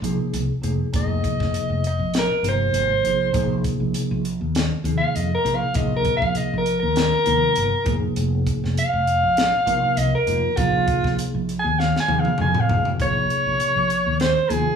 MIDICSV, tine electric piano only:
0, 0, Header, 1, 2, 480
1, 0, Start_track
1, 0, Key_signature, -5, "minor"
1, 0, Tempo, 603015
1, 748, Time_signature, 4, 2, 24, 8
1, 11747, End_track
2, 0, Start_track
2, 0, Title_t, "Tine electric piano"
2, 0, Program_c, 0, 4
2, 22, Note_on_c, 0, 48, 76
2, 24, Note_on_c, 0, 53, 71
2, 30, Note_on_c, 0, 58, 69
2, 30, Note_on_c, 0, 63, 66
2, 35, Note_on_c, 0, 68, 89
2, 379, Note_off_c, 0, 48, 0
2, 379, Note_off_c, 0, 53, 0
2, 382, Note_off_c, 0, 58, 0
2, 382, Note_off_c, 0, 63, 0
2, 385, Note_off_c, 0, 68, 0
2, 495, Note_on_c, 0, 48, 61
2, 501, Note_on_c, 0, 53, 60
2, 505, Note_on_c, 0, 58, 59
2, 505, Note_on_c, 0, 63, 56
2, 509, Note_on_c, 0, 68, 78
2, 680, Note_off_c, 0, 48, 0
2, 683, Note_off_c, 0, 53, 0
2, 684, Note_off_c, 0, 58, 0
2, 684, Note_off_c, 0, 63, 0
2, 687, Note_off_c, 0, 68, 0
2, 738, Note_on_c, 0, 48, 78
2, 744, Note_on_c, 0, 53, 64
2, 746, Note_on_c, 0, 58, 69
2, 749, Note_on_c, 0, 63, 65
2, 753, Note_on_c, 0, 68, 80
2, 1435, Note_off_c, 0, 48, 0
2, 1438, Note_off_c, 0, 53, 0
2, 1439, Note_off_c, 0, 58, 0
2, 1440, Note_off_c, 0, 63, 0
2, 1442, Note_off_c, 0, 68, 0
2, 1938, Note_on_c, 0, 48, 61
2, 1943, Note_on_c, 0, 53, 59
2, 1943, Note_on_c, 0, 58, 58
2, 1945, Note_on_c, 0, 63, 63
2, 1949, Note_on_c, 0, 67, 67
2, 2297, Note_off_c, 0, 48, 0
2, 2299, Note_off_c, 0, 53, 0
2, 2299, Note_off_c, 0, 58, 0
2, 2300, Note_off_c, 0, 63, 0
2, 2302, Note_off_c, 0, 67, 0
2, 2424, Note_on_c, 0, 48, 59
2, 2429, Note_on_c, 0, 53, 53
2, 2429, Note_on_c, 0, 58, 49
2, 2438, Note_on_c, 0, 63, 53
2, 2440, Note_on_c, 0, 68, 68
2, 2604, Note_off_c, 0, 48, 0
2, 2607, Note_off_c, 0, 53, 0
2, 2607, Note_off_c, 0, 58, 0
2, 2611, Note_off_c, 0, 63, 0
2, 2613, Note_off_c, 0, 68, 0
2, 2653, Note_on_c, 0, 48, 84
2, 2656, Note_on_c, 0, 58, 82
2, 2658, Note_on_c, 0, 53, 77
2, 2660, Note_on_c, 0, 63, 86
2, 2665, Note_on_c, 0, 68, 93
2, 3352, Note_off_c, 0, 48, 0
2, 3353, Note_off_c, 0, 58, 0
2, 3354, Note_off_c, 0, 53, 0
2, 3355, Note_off_c, 0, 63, 0
2, 3358, Note_off_c, 0, 68, 0
2, 3856, Note_on_c, 0, 48, 64
2, 3863, Note_on_c, 0, 53, 55
2, 3865, Note_on_c, 0, 58, 59
2, 3867, Note_on_c, 0, 68, 72
2, 3869, Note_on_c, 0, 63, 56
2, 4215, Note_off_c, 0, 48, 0
2, 4218, Note_off_c, 0, 53, 0
2, 4219, Note_off_c, 0, 58, 0
2, 4221, Note_off_c, 0, 63, 0
2, 4221, Note_off_c, 0, 68, 0
2, 4333, Note_on_c, 0, 48, 59
2, 4334, Note_on_c, 0, 58, 57
2, 4335, Note_on_c, 0, 53, 52
2, 4340, Note_on_c, 0, 68, 58
2, 4342, Note_on_c, 0, 63, 56
2, 4518, Note_off_c, 0, 48, 0
2, 4519, Note_off_c, 0, 53, 0
2, 4519, Note_off_c, 0, 58, 0
2, 4522, Note_off_c, 0, 63, 0
2, 4522, Note_off_c, 0, 68, 0
2, 4568, Note_on_c, 0, 48, 79
2, 4570, Note_on_c, 0, 53, 70
2, 4572, Note_on_c, 0, 58, 69
2, 4575, Note_on_c, 0, 68, 84
2, 4577, Note_on_c, 0, 63, 65
2, 5268, Note_off_c, 0, 48, 0
2, 5269, Note_off_c, 0, 53, 0
2, 5270, Note_off_c, 0, 58, 0
2, 5272, Note_off_c, 0, 63, 0
2, 5272, Note_off_c, 0, 68, 0
2, 5766, Note_on_c, 0, 48, 65
2, 5768, Note_on_c, 0, 53, 60
2, 5772, Note_on_c, 0, 58, 62
2, 5775, Note_on_c, 0, 63, 63
2, 5778, Note_on_c, 0, 70, 73
2, 6129, Note_off_c, 0, 48, 0
2, 6130, Note_off_c, 0, 53, 0
2, 6132, Note_off_c, 0, 58, 0
2, 6133, Note_off_c, 0, 63, 0
2, 6135, Note_off_c, 0, 70, 0
2, 6243, Note_on_c, 0, 48, 79
2, 6248, Note_on_c, 0, 53, 76
2, 6254, Note_on_c, 0, 63, 69
2, 6255, Note_on_c, 0, 58, 79
2, 6258, Note_on_c, 0, 68, 94
2, 7025, Note_off_c, 0, 48, 0
2, 7028, Note_off_c, 0, 53, 0
2, 7031, Note_off_c, 0, 58, 0
2, 7031, Note_off_c, 0, 63, 0
2, 7032, Note_off_c, 0, 68, 0
2, 7688, Note_on_c, 0, 48, 83
2, 7689, Note_on_c, 0, 53, 78
2, 7692, Note_on_c, 0, 58, 74
2, 7694, Note_on_c, 0, 63, 69
2, 7700, Note_on_c, 0, 70, 81
2, 8049, Note_off_c, 0, 48, 0
2, 8049, Note_off_c, 0, 53, 0
2, 8050, Note_off_c, 0, 58, 0
2, 8052, Note_off_c, 0, 63, 0
2, 8054, Note_off_c, 0, 70, 0
2, 8170, Note_on_c, 0, 48, 57
2, 8175, Note_on_c, 0, 53, 54
2, 8175, Note_on_c, 0, 58, 54
2, 8179, Note_on_c, 0, 63, 56
2, 8183, Note_on_c, 0, 65, 71
2, 8354, Note_off_c, 0, 48, 0
2, 8356, Note_off_c, 0, 53, 0
2, 8356, Note_off_c, 0, 58, 0
2, 8359, Note_off_c, 0, 63, 0
2, 8361, Note_off_c, 0, 65, 0
2, 8407, Note_on_c, 0, 48, 72
2, 8414, Note_on_c, 0, 53, 70
2, 8415, Note_on_c, 0, 58, 73
2, 8421, Note_on_c, 0, 63, 71
2, 8421, Note_on_c, 0, 68, 86
2, 9105, Note_off_c, 0, 48, 0
2, 9109, Note_off_c, 0, 53, 0
2, 9109, Note_off_c, 0, 58, 0
2, 9112, Note_off_c, 0, 63, 0
2, 9112, Note_off_c, 0, 68, 0
2, 9616, Note_on_c, 0, 48, 67
2, 9620, Note_on_c, 0, 53, 67
2, 9623, Note_on_c, 0, 58, 60
2, 9626, Note_on_c, 0, 63, 59
2, 9629, Note_on_c, 0, 68, 76
2, 9972, Note_off_c, 0, 48, 0
2, 9974, Note_off_c, 0, 53, 0
2, 9976, Note_off_c, 0, 58, 0
2, 9977, Note_off_c, 0, 63, 0
2, 9979, Note_off_c, 0, 68, 0
2, 10097, Note_on_c, 0, 53, 57
2, 10098, Note_on_c, 0, 48, 59
2, 10101, Note_on_c, 0, 58, 58
2, 10102, Note_on_c, 0, 63, 55
2, 10106, Note_on_c, 0, 68, 63
2, 10277, Note_off_c, 0, 53, 0
2, 10278, Note_off_c, 0, 48, 0
2, 10279, Note_off_c, 0, 58, 0
2, 10280, Note_off_c, 0, 63, 0
2, 10282, Note_off_c, 0, 68, 0
2, 10342, Note_on_c, 0, 48, 73
2, 10345, Note_on_c, 0, 58, 58
2, 10348, Note_on_c, 0, 53, 60
2, 10349, Note_on_c, 0, 63, 61
2, 10351, Note_on_c, 0, 68, 70
2, 11034, Note_off_c, 0, 48, 0
2, 11036, Note_off_c, 0, 58, 0
2, 11037, Note_off_c, 0, 53, 0
2, 11038, Note_off_c, 0, 63, 0
2, 11039, Note_off_c, 0, 68, 0
2, 11537, Note_on_c, 0, 48, 60
2, 11541, Note_on_c, 0, 53, 54
2, 11546, Note_on_c, 0, 58, 55
2, 11546, Note_on_c, 0, 63, 51
2, 11551, Note_on_c, 0, 65, 63
2, 11747, Note_off_c, 0, 48, 0
2, 11747, Note_off_c, 0, 53, 0
2, 11747, Note_off_c, 0, 58, 0
2, 11747, Note_off_c, 0, 63, 0
2, 11747, Note_off_c, 0, 65, 0
2, 11747, End_track
0, 0, End_of_file